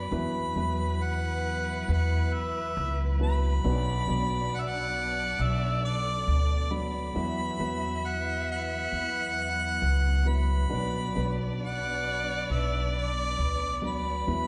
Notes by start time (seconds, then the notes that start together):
Already playing: F#3 B3 D4 B4 B5
0.11 E2 F#3 B3 E4 B4
0.56 E2 F#3 B3 E4 B4
1.03 F#5
1.88 E2 F#5
2.34 E5
2.77 C#2
3.20 F#3 B3 E4 B4 B5
3.63 B1 B2 F#3 B3 D4 B4 D5
4.08 B1 F#3 B3 D4 D5
4.55 F#5
4.61 E5
4.68 F#5
5.39 B1 A4 E5
5.85 D5
6.27 D2
6.71 F#3 B3 D4 D5 B5
7.15 E2 F#3 B3 E4 B4 E5
7.59 E2 F#3 B3 E4 B4
8.07 F#5
8.52 F#5
8.92 E2
9.82 C#2
10.25 F#3 B3 E4 B4 B5
10.69 B1 B2 F#3 B3 D4 B4 D5
11.15 B1 F#3 B3 D4 B4
11.63 F#5
12.50 B1 E5
12.98 D5
13.38 D2
13.82 F#3 B3 D4 B4
13.86 B5
14.26 E2 F#3 B3 E4 B4